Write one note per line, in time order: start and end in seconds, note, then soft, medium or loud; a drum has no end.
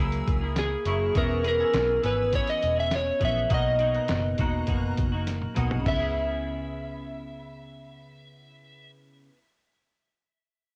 0.00 0.21 C#2 medium
0.00 0.41 F#3 medium
0.00 0.42 A#3 medium
0.00 0.41 E4 medium
0.00 0.40 G#4 medium
0.00 0.58 A#4 medium
0.00 0.24 G#5 medium
0.00 0.24 E6 medium
0.12 closed hi-hat soft
0.28 0.75 C#2 medium
0.28 kick medium
0.28 closed hi-hat medium
0.41 0.85 A#3 soft
0.41 0.86 E4 soft
0.41 0.86 G#4 soft
0.56 1.17 G#4 medium
0.56 snare loud
0.56 closed hi-hat medium
0.85 1.09 F#1 medium
0.85 1.15 F#3 medium
0.85 1.16 A#3 medium
0.85 1.15 E4 medium
0.85 1.15 G#4 medium
0.85 1.00 E5 medium
0.85 1.00 C#6 medium
0.85 closed hi-hat medium
1.15 1.62 E1 medium
1.15 1.42 E3 medium
1.15 1.43 B3 medium
1.15 1.43 C#4 medium
1.15 1.43 G#4 medium
1.15 1.47 A#4 medium
1.15 1.30 E5 medium
1.15 1.30 C#6 medium
1.15 kick loud
1.15 closed hi-hat medium
1.43 2.01 E3 medium
1.43 2.03 B3 medium
1.43 2.03 C#4 medium
1.43 2.03 G#4 medium
1.43 closed hi-hat medium
1.48 2.01 A#4 medium
1.60 1.74 G#5 medium
1.60 1.74 E6 medium
1.74 1.98 B1 medium
1.74 snare loud
1.74 closed hi-hat medium
2.02 2.39 G#1 medium
2.02 2.31 E3 medium
2.02 2.32 B3 medium
2.02 2.33 C#4 medium
2.02 2.34 G#4 medium
2.02 2.35 B4 medium
2.02 2.59 G#5 soft
2.02 2.59 E6 medium
2.02 closed hi-hat medium
2.32 2.77 E3 soft
2.32 2.77 B3 medium
2.32 2.76 C#4 medium
2.32 2.74 G#4 medium
2.32 2.49 C#5 medium
2.32 kick medium
2.32 closed hi-hat medium
2.47 2.79 D#5 medium
2.47 closed hi-hat medium
2.62 3.10 E1 medium
2.62 closed hi-hat medium
2.76 3.19 B3 soft
2.76 3.20 C#4 soft
2.76 3.20 G#4 soft
2.80 2.94 E5 medium
2.91 snare loud
2.91 closed hi-hat loud
2.96 3.21 C#5 medium
3.20 3.45 A#1 medium
3.20 3.50 E3 medium
3.20 3.49 B3 medium
3.20 3.50 C#4 medium
3.20 3.51 G#4 medium
3.20 kick medium
3.20 closed hi-hat medium
3.25 3.51 E5 medium
3.49 3.98 B1 medium
3.49 3.78 B2 medium
3.49 3.78 A#3 medium
3.49 3.79 D#4 medium
3.49 3.79 F#4 medium
3.49 3.65 F#5 medium
3.49 3.64 D#6 medium
3.49 kick loud
3.49 closed hi-hat medium
3.54 5.25 D#5 medium
3.79 4.37 B2 medium
3.79 4.38 A#3 medium
3.79 4.39 D#4 medium
3.79 4.39 F#4 medium
3.79 closed hi-hat medium
3.95 4.10 A#5 soft
3.95 4.09 F#6 medium
3.95 closed hi-hat soft
4.08 4.34 F#1 medium
4.08 snare loud
4.08 closed hi-hat medium
4.38 4.63 E1 medium
4.38 4.66 B2 medium
4.38 4.67 A#3 medium
4.38 4.67 D#4 medium
4.38 4.69 F#4 medium
4.38 4.96 A#5 medium
4.38 4.95 F#6 medium
4.38 kick medium
4.38 closed hi-hat medium
4.67 4.92 F#1 medium
4.67 5.12 B2 medium
4.67 5.12 A#3 medium
4.67 5.12 D#4 medium
4.67 5.11 F#4 medium
4.67 kick medium
4.67 closed hi-hat medium
4.97 5.45 F#1 medium
4.97 kick medium
4.97 closed hi-hat medium
5.12 5.54 A#3 soft
5.12 5.55 D#4 soft
5.12 5.55 F#4 medium
5.27 snare soft
5.27 closed hi-hat medium
5.42 high tom soft
5.54 5.80 B1 medium
5.54 5.78 B2 medium
5.54 5.85 A#3 medium
5.54 5.86 D#4 medium
5.54 5.86 F#4 medium
5.54 5.71 F#5 medium
5.54 5.71 D#6 medium
5.54 closed hi-hat medium
5.54 mid tom medium
5.71 floor tom medium
5.79 9.29 C#3 medium
5.85 8.88 C#2 medium
5.85 9.37 B3 medium
5.85 7.58 E5 medium
5.85 8.91 E5 medium
5.85 kick medium
5.85 floor tom medium
5.85 crash medium
5.94 9.44 E4 medium
6.00 9.50 G#4 medium